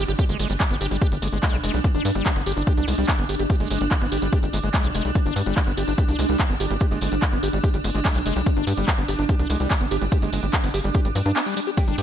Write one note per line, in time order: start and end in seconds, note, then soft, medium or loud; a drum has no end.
0.00 11.76 D4 medium
0.08 0.15 G1 medium
0.08 0.12 G4 medium
0.08 closed hi-hat soft
0.08 maracas soft
0.19 0.24 G4 medium
0.19 kick loud
0.19 closed hi-hat medium
0.19 maracas medium
0.29 0.36 G1 medium
0.29 0.37 G#3 medium
0.29 closed hi-hat soft
0.29 maracas soft
0.39 0.46 G1 loud
0.39 0.48 G#3 medium
0.39 open hi-hat loud
0.39 maracas loud
0.50 0.56 G1 medium
0.50 0.53 G3 medium
0.50 closed hi-hat soft
0.50 maracas soft
0.60 0.63 G3 medium
0.60 kick loud
0.60 clap loud
0.60 closed hi-hat medium
0.60 maracas medium
0.71 0.77 G1 medium
0.71 0.76 B3 medium
0.71 closed hi-hat soft
0.81 0.87 G1 loud
0.81 0.86 G4 loud
0.81 open hi-hat loud
0.81 maracas loud
0.91 0.98 G1 medium
0.91 0.97 G3 medium
0.91 closed hi-hat soft
0.91 maracas soft
1.02 1.07 G4 medium
1.02 kick loud
1.02 closed hi-hat medium
1.02 maracas medium
1.12 1.18 G1 medium
1.12 1.15 G3 medium
1.12 closed hi-hat soft
1.12 maracas soft
1.22 1.29 G1 loud
1.22 1.28 G#3 medium
1.22 open hi-hat loud
1.22 maracas loud
1.32 1.39 G1 medium
1.32 1.38 G#3 medium
1.32 closed hi-hat soft
1.32 maracas soft
1.43 1.55 G#3 medium
1.43 kick loud
1.43 clap loud
1.43 closed hi-hat medium
1.43 maracas medium
1.53 1.60 B1 medium
1.53 1.57 G3 medium
1.53 closed hi-hat soft
1.53 maracas soft
1.64 1.70 F1 loud
1.64 1.72 G#3 loud
1.64 open hi-hat loud
1.64 maracas loud
1.74 1.81 B1 loud
1.74 1.79 G3 medium
1.74 closed hi-hat soft
1.74 maracas soft
1.84 1.88 G3 medium
1.84 kick loud
1.84 closed hi-hat medium
1.84 maracas medium
1.94 2.01 G1 medium
1.94 2.03 D4 loud
1.94 closed hi-hat soft
1.94 maracas soft
2.05 2.12 G2 loud
2.05 2.10 G3 medium
2.05 open hi-hat loud
2.05 maracas loud
2.15 2.22 G1 medium
2.15 2.23 G3 loud
2.15 closed hi-hat soft
2.15 maracas soft
2.25 2.31 G3 medium
2.25 kick loud
2.25 clap loud
2.25 closed hi-hat medium
2.25 maracas medium
2.36 2.43 G1 medium
2.36 2.41 B3 medium
2.36 closed hi-hat soft
2.46 2.53 G1 loud
2.46 2.52 G4 loud
2.46 open hi-hat loud
2.46 maracas medium
2.57 2.63 G1 medium
2.57 2.62 D4 loud
2.57 maracas soft
2.66 2.72 G4 medium
2.66 kick loud
2.66 closed hi-hat medium
2.66 maracas medium
2.77 2.84 C2 medium
2.77 2.86 D4 loud
2.77 closed hi-hat soft
2.77 maracas soft
2.87 2.94 C2 loud
2.87 2.96 G#3 medium
2.87 open hi-hat loud
2.87 maracas medium
2.98 3.05 C2 medium
2.98 3.06 G3 medium
2.98 closed hi-hat soft
2.98 maracas soft
3.08 3.12 G3 medium
3.08 kick loud
3.08 clap loud
3.08 closed hi-hat medium
3.08 maracas medium
3.19 3.25 G1 medium
3.19 3.24 B3 medium
3.19 closed hi-hat soft
3.29 3.36 G1 loud
3.29 3.35 G4 loud
3.29 open hi-hat loud
3.29 maracas loud
3.39 3.46 G1 medium
3.39 3.43 G4 medium
3.39 closed hi-hat soft
3.39 maracas soft
3.50 3.55 G4 medium
3.50 kick loud
3.50 closed hi-hat medium
3.50 maracas medium
3.60 3.67 G1 medium
3.60 3.68 G#3 medium
3.60 closed hi-hat soft
3.60 maracas soft
3.71 3.77 G1 loud
3.71 3.79 G#3 medium
3.71 open hi-hat loud
3.71 maracas loud
3.81 3.87 G1 medium
3.81 3.84 G3 medium
3.81 closed hi-hat soft
3.81 maracas soft
3.91 3.94 G3 medium
3.91 kick loud
3.91 clap loud
3.91 closed hi-hat medium
3.91 maracas medium
4.02 4.08 G1 medium
4.02 4.07 B3 medium
4.02 closed hi-hat soft
4.12 4.18 G1 loud
4.12 4.17 G4 loud
4.12 open hi-hat loud
4.12 maracas loud
4.22 4.29 G1 medium
4.22 4.28 G3 medium
4.22 closed hi-hat soft
4.22 maracas soft
4.32 4.38 G4 medium
4.32 kick loud
4.32 closed hi-hat medium
4.32 maracas medium
4.43 4.49 G1 medium
4.43 4.46 G3 medium
4.43 closed hi-hat soft
4.43 maracas soft
4.53 4.60 G1 loud
4.53 4.59 G#3 medium
4.53 open hi-hat loud
4.53 maracas medium
4.63 4.70 G1 medium
4.63 4.69 G#3 medium
4.63 closed hi-hat soft
4.63 maracas soft
4.74 4.86 G#3 medium
4.74 kick loud
4.74 clap loud
4.74 closed hi-hat medium
4.74 maracas medium
4.84 4.91 B1 medium
4.84 4.88 G3 medium
4.84 closed hi-hat soft
4.84 maracas soft
4.95 5.01 F1 loud
4.95 5.03 G#3 loud
4.95 open hi-hat loud
4.95 maracas loud
5.05 5.12 B1 loud
5.05 5.10 G3 medium
5.05 maracas soft
5.15 5.19 G3 medium
5.15 kick loud
5.15 closed hi-hat medium
5.15 maracas medium
5.26 5.32 G1 medium
5.26 5.34 D4 loud
5.26 closed hi-hat soft
5.26 maracas soft
5.36 5.43 G2 loud
5.36 5.41 G3 medium
5.36 open hi-hat loud
5.36 maracas medium
5.46 5.53 G1 medium
5.46 5.55 G3 loud
5.46 closed hi-hat soft
5.46 maracas soft
5.57 5.62 G3 medium
5.57 kick loud
5.57 clap loud
5.57 closed hi-hat medium
5.57 maracas medium
5.67 5.74 G1 medium
5.67 5.72 B3 medium
5.67 closed hi-hat soft
5.77 5.84 G1 medium
5.77 5.83 G4 loud
5.77 open hi-hat loud
5.77 maracas medium
5.87 5.94 G1 medium
5.87 5.93 D4 loud
5.87 closed hi-hat soft
5.87 maracas soft
5.98 6.04 G4 medium
5.98 kick loud
5.98 closed hi-hat medium
5.98 maracas medium
6.08 6.15 C2 medium
6.08 6.17 D4 loud
6.08 closed hi-hat soft
6.08 maracas soft
6.19 6.25 C2 loud
6.19 6.27 G#3 medium
6.19 open hi-hat loud
6.19 maracas medium
6.28 6.36 C2 medium
6.28 6.37 G3 medium
6.28 closed hi-hat soft
6.28 maracas soft
6.39 6.43 G3 medium
6.39 kick loud
6.39 clap loud
6.39 closed hi-hat medium
6.39 maracas medium
6.50 6.56 G1 medium
6.50 6.55 B3 medium
6.50 closed hi-hat soft
6.60 6.67 G1 loud
6.60 6.66 G4 loud
6.60 open hi-hat loud
6.60 maracas medium
6.70 6.77 G1 medium
6.70 6.74 G3 loud
6.70 closed hi-hat soft
6.70 maracas soft
6.80 6.86 G4 medium
6.80 kick loud
6.80 closed hi-hat medium
6.80 maracas medium
6.91 6.98 G1 medium
6.91 6.99 G#3 medium
6.91 closed hi-hat soft
6.91 maracas soft
7.01 7.08 G1 loud
7.01 7.10 G#3 medium
7.01 open hi-hat loud
7.01 maracas medium
7.12 7.18 G1 medium
7.12 7.15 G3 medium
7.12 closed hi-hat soft
7.12 maracas soft
7.22 7.26 G3 medium
7.22 kick loud
7.22 clap loud
7.22 closed hi-hat medium
7.22 maracas soft
7.33 7.39 G1 medium
7.33 7.38 B3 medium
7.33 closed hi-hat soft
7.43 7.49 G1 loud
7.43 7.48 G4 loud
7.43 open hi-hat loud
7.43 maracas medium
7.53 7.60 G1 medium
7.53 7.59 G3 medium
7.53 closed hi-hat soft
7.53 maracas soft
7.64 7.69 G4 medium
7.64 kick loud
7.64 closed hi-hat medium
7.64 maracas medium
7.74 7.81 G1 medium
7.74 7.77 G3 medium
7.74 closed hi-hat soft
7.74 maracas soft
7.84 7.91 G1 loud
7.84 7.90 G#3 medium
7.84 open hi-hat loud
7.84 maracas medium
7.95 8.01 G1 medium
7.95 8.00 G#3 medium
7.95 maracas soft
8.05 8.17 G#3 medium
8.05 kick loud
8.05 clap loud
8.05 closed hi-hat medium
8.05 maracas soft
8.15 8.22 B1 medium
8.15 8.19 G3 medium
8.15 closed hi-hat soft
8.15 maracas soft
8.26 8.32 F1 loud
8.26 8.34 G#3 loud
8.26 open hi-hat loud
8.26 maracas medium
8.36 8.43 B1 loud
8.36 8.41 G3 medium
8.36 closed hi-hat soft
8.36 maracas soft
8.46 8.50 G3 medium
8.46 kick loud
8.46 closed hi-hat medium
8.46 maracas soft
8.56 8.63 G1 medium
8.56 8.65 D4 loud
8.56 closed hi-hat soft
8.56 maracas soft
8.67 8.74 G2 loud
8.67 8.72 G3 medium
8.67 open hi-hat loud
8.67 maracas medium
8.77 8.84 G1 medium
8.77 8.86 G3 loud
8.77 closed hi-hat soft
8.77 maracas soft
8.87 8.93 G3 medium
8.87 kick loud
8.87 clap loud
8.87 closed hi-hat medium
8.87 maracas soft
8.98 9.05 G1 medium
8.98 9.04 B3 medium
8.98 closed hi-hat soft
9.08 9.15 G1 medium
9.08 9.14 G4 loud
9.08 open hi-hat loud
9.08 maracas loud
9.19 9.25 G1 medium
9.19 9.24 D4 loud
9.19 closed hi-hat soft
9.19 maracas soft
9.28 9.35 G4 medium
9.28 kick loud
9.28 closed hi-hat medium
9.28 maracas medium
9.39 9.46 C2 medium
9.39 9.48 D4 loud
9.39 closed hi-hat soft
9.39 maracas soft
9.49 9.56 C2 loud
9.49 9.58 G#3 medium
9.49 open hi-hat loud
9.49 maracas medium
9.60 9.67 C2 medium
9.60 9.68 G3 medium
9.60 closed hi-hat soft
9.60 maracas soft
9.71 9.74 G3 medium
9.71 kick loud
9.71 clap loud
9.71 closed hi-hat medium
9.71 maracas medium
9.81 9.87 G1 medium
9.81 9.86 B3 medium
9.81 closed hi-hat soft
9.91 9.98 G1 loud
9.91 9.97 G4 loud
9.91 open hi-hat loud
9.91 maracas loud
10.02 10.08 G1 loud
10.02 10.05 G3 loud
10.02 closed hi-hat soft
10.02 maracas soft
10.12 10.17 G4 medium
10.12 kick loud
10.12 closed hi-hat medium
10.12 maracas medium
10.22 10.29 G1 medium
10.22 10.30 G#3 medium
10.22 closed hi-hat soft
10.22 maracas soft
10.33 10.39 G1 loud
10.33 10.41 G#3 medium
10.33 open hi-hat loud
10.33 maracas medium
10.43 10.50 G1 medium
10.43 10.46 G3 medium
10.43 closed hi-hat soft
10.43 maracas soft
10.53 10.57 G3 medium
10.53 kick loud
10.53 clap loud
10.53 closed hi-hat medium
10.53 maracas medium
10.64 10.70 G1 medium
10.64 10.69 B3 medium
10.64 open hi-hat medium
10.64 maracas soft
10.74 10.81 G1 loud
10.74 10.79 G4 loud
10.74 open hi-hat loud
10.74 maracas medium
10.84 10.91 G1 medium
10.84 10.90 G3 medium
10.84 closed hi-hat soft
10.84 maracas soft
10.94 11.00 G4 medium
10.94 kick loud
10.94 closed hi-hat medium
10.94 maracas medium
11.05 11.12 G#1 medium
11.05 11.08 G3 medium
11.05 closed hi-hat soft
11.05 maracas soft
11.15 11.22 G2 loud
11.15 11.19 F3 medium
11.15 open hi-hat loud
11.15 maracas loud
11.26 11.32 G2 medium
11.26 11.31 D4 loud
11.26 closed hi-hat soft
11.26 maracas soft
11.36 11.41 B3 medium
11.36 clap loud
11.36 closed hi-hat medium
11.36 maracas medium
11.46 11.54 G3 medium
11.46 closed hi-hat soft
11.46 maracas soft
11.57 11.60 G3 loud
11.57 open hi-hat loud
11.57 maracas medium
11.67 11.70 G4 medium
11.67 closed hi-hat soft
11.67 maracas soft
11.77 11.81 G3 medium
11.77 12.03 D4 medium
11.77 11.83 G4 loud
11.77 kick loud
11.77 closed hi-hat medium
11.77 ride medium
11.77 maracas medium
11.88 11.94 G1 medium
11.88 11.93 G3 medium
11.88 11.96 D4 loud
11.88 closed hi-hat soft
11.88 maracas soft
11.98 12.03 G2 loud
11.98 12.03 G3 medium
11.98 12.03 G4 loud
11.98 open hi-hat loud
11.98 ride medium
11.98 maracas medium